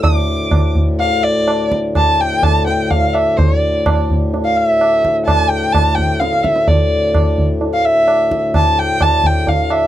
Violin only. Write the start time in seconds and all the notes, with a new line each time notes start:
0.03 D6
0.99 F5
1.24 D5
1.96 A5
2.20 G5
2.43 A5
2.67 G5
2.90 F5
3.13 E5
3.37 C5
3.58 D5
4.45 F5
4.57 E5
5.26 A5
5.49 G5
5.72 A5
5.95 G5
6.19 F5
6.43 E5
6.67 D5
7.73 F5
7.85 E5
8.55 A5
8.78 G5
9.02 A5
9.26 G5
9.48 F5
9.70 E5